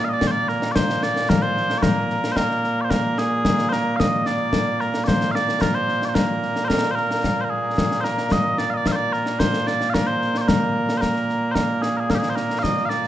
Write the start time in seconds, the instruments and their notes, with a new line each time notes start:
Already playing: bagpipes A#2 A#3
0.05 bagpipes F5
0.09 bagpipes D#5
0.13 bagpipes D5
0.21 concert bass drum, snare
0.27 bagpipes C5 D5
0.48 bagpipes A#4, snare
0.62 snare
0.72 bagpipes C5 D5, concert bass drum, snare
0.90 snare
1.03 bagpipes D5, snare
1.16 snare
1.29 bagpipes A#4, concert bass drum, snare
1.42 bagpipes C5
1.57 snare
1.70 snare
1.78 bagpipes D5
1.82 bagpipes A#4, concert bass drum, snare
2.10 snare
2.24 snare
2.32 bagpipes C5
2.36 bagpipes A#4, concert bass drum, snare
2.51 snare
2.64 snare
2.81 bagpipes C5 D5
2.90 bagpipes A#4, concert bass drum, snare
3.18 bagpipes G#4, snare
3.45 concert bass drum, snare
3.59 snare
3.69 bagpipes A#4 C5, snare
3.96 bagpipes D#5 F5, concert bass drum, snare
4.26 bagpipes D5, snare
4.53 concert bass drum, snare
4.80 bagpipes A#4, snare
4.94 snare
5.04 bagpipes C5 D5, concert bass drum, snare
5.21 snare
5.31 bagpipes D5 F5
5.35 snare
5.49 snare
5.61 bagpipes A#4, concert bass drum, snare
5.75 bagpipes C5
5.89 snare
6.02 bagpipes D5, snare
6.09 bagpipes C5
6.15 bagpipes A#4, concert bass drum, snare
6.43 snare
6.56 snare
6.65 bagpipes A#4 C5
6.70 concert bass drum, snare
6.84 snare
6.91 bagpipes C5
6.95 bagpipes A#4, snare
7.11 snare
7.24 concert bass drum, snare
7.41 bagpipes A#4 C5
7.50 bagpipes G#4
7.78 concert bass drum, snare
7.92 snare
8.01 bagpipes A#4 C5, snare
8.18 snare
8.31 bagpipes D#5, concert bass drum, snare
8.58 bagpipes D5, snare
8.70 bagpipes D#5 F5
8.77 bagpipes D5
8.86 bagpipes F5, concert bass drum, snare
8.92 bagpipes C5 D5
9.13 bagpipes A#4, snare
9.26 snare
9.39 bagpipes C5, concert bass drum, snare
9.54 snare
9.67 bagpipes D5, snare
9.81 snare
9.90 bagpipes A#4 F5
9.94 concert bass drum, snare
10.07 bagpipes C5
10.22 snare
10.35 bagpipes D5, snare
10.41 bagpipes C5
10.48 bagpipes A#4, concert bass drum, snare
10.89 snare
10.98 bagpipes A#4 C5
11.02 concert bass drum, snare
11.16 snare
11.29 snare
11.52 bagpipes A#4 C5, concert bass drum, snare
11.82 bagpipes G#4, snare
11.97 bagpipes G#4 A#4
12.10 bagpipes A#4, concert bass drum, snare
12.15 bagpipes G4 G#4
12.23 snare
12.30 bagpipes C5
12.36 bagpipes A#4, snare
12.50 snare
12.59 bagpipes D#5 F5
12.64 concert bass drum, snare
12.77 snare
12.85 bagpipes D5 F5
12.90 snare
13.04 snare